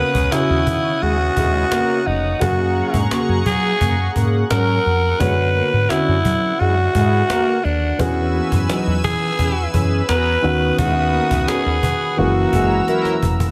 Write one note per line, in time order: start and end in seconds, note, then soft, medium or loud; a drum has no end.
0.00 2.02 C#3 medium
0.00 0.11 A#3 medium
0.00 2.02 B3 medium
0.00 2.03 C#4 medium
0.00 2.37 C#4 medium
0.00 0.11 F#4 medium
0.00 2.03 F#4 medium
0.00 0.11 A#4 medium
0.00 0.34 B4 loud
0.00 7.96 F#5 medium
0.00 2.38 D#6 medium
0.15 0.28 C#2 medium
0.15 cajon bass medium
0.32 0.60 C#3 loud
0.32 0.60 C#4 loud
0.32 1.04 E4 loud
0.32 0.60 F#4 loud
0.32 cajon slap loud
0.50 0.63 D#2 loud
0.67 0.93 D#3 loud
0.67 cajon bass medium
1.02 1.28 D#2 medium
1.02 1.16 G#3 medium
1.02 1.16 E4 medium
1.02 2.08 F#4 loud
1.02 1.16 G#4 loud
1.02 cajon slap soft
1.37 1.63 D#2 medium
1.37 1.65 G#3 medium
1.37 1.65 E4 medium
1.37 1.65 G#4 loud
1.37 cajon bass medium
1.54 cajon slap soft
1.72 1.99 A#3 loud
1.72 1.99 F#4 loud
1.72 1.99 A#4 loud
1.72 cajon slap loud
2.06 2.33 F1 medium
2.06 2.41 D#4 medium
2.40 2.81 F#2 loud
2.40 2.55 C#3 loud
2.40 5.16 A#3 medium
2.40 2.55 A#3 loud
2.40 5.17 C#4 medium
2.40 5.16 F#4 medium
2.40 3.07 F#4 medium
2.40 2.55 G#4 loud
2.40 5.18 G#4 medium
2.40 5.17 G#4 medium
2.40 5.18 A#5 medium
2.40 5.18 C#6 medium
2.40 cajon bass loud
2.76 2.90 F#3 medium
2.76 2.90 C#4 medium
2.76 2.90 A#4 medium
2.76 cajon slap soft
2.94 3.07 G#2 medium
2.94 cajon bass medium
3.11 3.39 C#3 medium
3.11 3.39 A#3 medium
3.11 3.39 F#4 loud
3.11 cajon slap loud
3.29 3.42 F#2 loud
3.46 3.72 F#3 loud
3.46 4.12 G#4 loud
3.46 cajon bass loud
3.81 4.07 F#2 medium
3.81 3.95 C#3 medium
3.81 3.95 A#3 medium
3.81 3.95 G#4 loud
3.81 cajon bass medium
4.16 4.42 G#2 medium
4.16 4.44 C#3 loud
4.16 4.44 A#3 medium
4.16 4.44 G#4 loud
4.16 cajon bass medium
4.50 4.77 G#2 medium
4.50 4.78 F#3 loud
4.50 4.78 C#4 loud
4.50 4.78 A#4 loud
4.50 5.21 A#4 loud
4.50 cajon slap loud
4.85 5.12 F2 medium
4.85 cajon slap soft
5.19 5.60 F#2 loud
5.19 7.95 D3 medium
5.19 5.34 G#3 medium
5.19 7.95 B3 medium
5.19 5.34 E4 medium
5.19 7.96 F#4 medium
5.19 5.34 G#4 loud
5.19 5.91 B4 loud
5.19 7.96 C#5 medium
5.19 cajon bass loud
5.55 5.69 A#3 medium
5.55 5.69 F#4 medium
5.55 5.69 A#4 medium
5.55 cajon slap soft
5.73 5.86 G#2 medium
5.90 6.18 D3 loud
5.90 6.18 C#4 loud
5.90 6.61 E4 loud
5.90 6.18 F#4 loud
5.90 cajon slap loud
6.08 6.21 F#2 medium
6.25 6.51 F#3 loud
6.25 cajon bass loud
6.60 6.86 F#2 medium
6.60 6.74 G#3 medium
6.60 6.74 E4 medium
6.60 7.66 F#4 loud
6.60 6.74 G#4 loud
6.60 cajon slap soft
6.95 7.21 G#2 medium
6.95 7.23 G#3 medium
6.95 7.23 E4 loud
6.95 7.23 G#4 loud
6.95 cajon bass medium
7.13 cajon slap soft
7.30 7.58 A#3 loud
7.30 7.58 F#4 loud
7.30 7.58 A#4 loud
7.30 cajon slap loud
7.65 7.91 D#2 medium
7.65 8.01 D4 medium
7.65 cajon slap soft
7.98 8.39 E2 loud
7.98 10.39 E3 medium
7.98 8.13 E3 medium
7.98 10.39 B3 medium
7.98 8.13 C#4 medium
7.98 10.40 C#4 medium
7.98 8.69 F#4 medium
7.98 8.13 G#4 loud
7.98 10.40 G#4 medium
7.98 12.14 B4 medium
7.98 10.41 G#5 medium
7.98 10.41 E6 medium
7.98 cajon bass loud
8.34 8.48 A#3 medium
8.34 8.48 F#4 medium
8.34 8.48 A#4 medium
8.34 cajon slap soft
8.52 8.65 F#2 medium
8.52 cajon bass medium
8.69 8.97 F#3 loud
8.69 8.97 D#4 medium
8.69 8.97 F#4 loud
8.69 cajon slap loud
8.87 9.00 E2 loud
9.04 9.30 E3 medium
9.04 9.70 G#4 loud
9.04 cajon bass medium
9.39 9.65 E2 medium
9.39 9.53 E3 medium
9.39 9.53 C#4 medium
9.39 9.53 G#4 loud
9.39 cajon bass medium
9.74 10.00 F#2 medium
9.74 10.02 E3 loud
9.74 10.02 C#4 medium
9.74 10.02 G#4 loud
9.74 cajon bass medium
9.91 cajon slap soft
10.09 10.35 E2 medium
10.09 10.37 B3 loud
10.09 10.37 F#4 loud
10.09 10.75 B4 loud
10.09 10.37 A#5 loud
10.09 cajon slap loud
10.42 10.70 D#2 loud
10.42 12.14 D#3 medium
10.42 12.14 B3 medium
10.42 12.15 C#4 medium
10.42 12.15 F#4 medium
10.42 13.51 F#5 medium
10.42 12.16 D#6 medium
10.42 cajon slap soft
10.78 11.18 D#2 loud
10.78 10.92 G#3 medium
10.78 10.92 E4 medium
10.78 11.50 F#4 loud
10.78 10.92 G#4 loud
10.78 cajon bass loud
11.13 11.27 A#3 medium
11.13 11.27 F#4 medium
11.13 11.27 A#4 medium
11.13 cajon slap soft
11.31 11.44 C#2 medium
11.31 cajon bass medium
11.48 11.76 D#3 loud
11.48 11.76 C#4 loud
11.48 11.76 F#4 loud
11.48 12.20 G#4 loud
11.48 cajon slap loud
11.66 11.79 D#2 medium
11.83 12.09 D#3 loud
11.83 cajon bass medium
12.17 12.44 F#1 loud
12.17 13.51 E3 medium
12.17 12.32 G#3 medium
12.17 13.51 A#3 medium
12.17 13.51 C#4 medium
12.17 12.32 E4 medium
12.17 13.23 F#4 medium
12.17 13.51 F#4 medium
12.17 12.32 G#4 loud
12.17 13.51 A#5 medium
12.17 13.51 E6 loud
12.17 cajon slap soft
12.53 12.79 F#1 medium
12.53 12.81 G#3 loud
12.53 12.81 E4 medium
12.53 12.81 G#4 loud
12.53 cajon bass medium
12.71 cajon slap soft
12.88 13.16 F#3 loud
12.88 13.16 E4 loud
12.88 13.16 A#4 loud
12.88 cajon slap medium
13.05 cajon slap medium
13.23 13.49 F1 medium
13.23 cajon bass medium
13.40 cajon bass medium